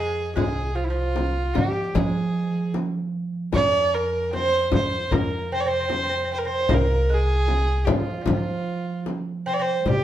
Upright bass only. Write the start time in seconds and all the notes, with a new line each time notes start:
Already playing: F2
0.36 C2
1.55 F3
1.95 F3
3.54 F2
4.73 F2
5.12 F2
6.69 C2
7.88 F3
8.27 F3
9.86 C3